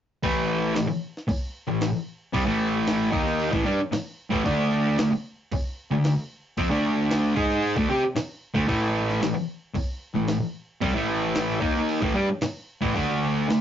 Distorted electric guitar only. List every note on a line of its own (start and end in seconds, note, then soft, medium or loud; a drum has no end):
0.23 0.74 A2 medium
0.23 0.74 E3 loud
0.23 0.76 A3 loud
0.75 0.86 A2 medium
0.75 0.89 E3 medium
0.88 muted distorted electric guitar stroke medium
1.28 muted distorted electric guitar stroke medium
1.67 1.89 A2 medium
1.67 1.89 E3 medium
2.33 2.45 C3 medium
2.33 2.46 G3 loud
2.46 3.11 A2 medium
2.46 3.12 E3 loud
2.46 3.12 A3 medium
3.12 3.51 D#3 medium
3.12 3.52 A#3 loud
3.12 3.52 D#4 loud
3.51 3.65 A2 medium
3.51 3.65 E3 loud
3.65 3.78 G3 loud
3.65 3.79 D4 loud
3.78 muted distorted electric guitar stroke medium
3.92 muted distorted electric guitar stroke medium
4.30 4.44 A2 medium
4.30 4.45 E3 medium
4.45 4.97 D3 medium
4.45 4.97 A3 loud
4.45 4.98 D4 loud
4.98 5.10 D3 medium
4.98 5.12 A3 medium
5.11 muted distorted electric guitar stroke medium
5.53 muted distorted electric guitar stroke medium
5.91 6.13 D3 medium
5.91 6.13 A3 medium
6.58 6.70 F3 medium
6.58 6.70 C4 loud
6.70 7.36 D3 medium
6.70 7.35 A3 loud
6.70 7.36 D4 loud
7.36 7.75 G#3 medium
7.36 7.76 D#4 medium
7.36 7.76 G#4 medium
7.76 7.89 D3 medium
7.76 7.89 A3 loud
7.89 8.02 C4 medium
7.89 8.02 G4 loud
8.03 muted distorted electric guitar stroke medium
8.16 muted distorted electric guitar stroke medium
8.54 8.67 D3 medium
8.54 8.67 A3 loud
8.67 9.20 A2 medium
8.67 9.20 E3 loud
8.67 9.22 A3 loud
9.21 9.33 A2 medium
9.21 9.35 E3 medium
9.34 muted distorted electric guitar stroke medium
9.74 muted distorted electric guitar stroke medium
10.14 10.36 A2 medium
10.14 10.36 E3 medium
10.81 10.94 C3 medium
10.81 10.95 G3 loud
10.94 11.60 A2 loud
10.94 11.61 E3 medium
10.94 11.62 A3 loud
11.60 12.01 D#3 medium
11.60 12.01 A#3 loud
11.60 12.01 D#4 loud
12.02 12.15 A2 medium
12.02 12.15 E3 loud
12.15 12.28 G3 medium
12.15 12.28 D4 loud
12.29 muted distorted electric guitar stroke medium
12.43 muted distorted electric guitar stroke medium
12.81 12.94 A2 loud
12.81 12.95 E3 loud
12.95 13.47 D3 loud
12.95 13.48 A3 loud
12.95 13.48 D4 loud
13.48 13.61 D3 medium
13.48 13.61 A3 medium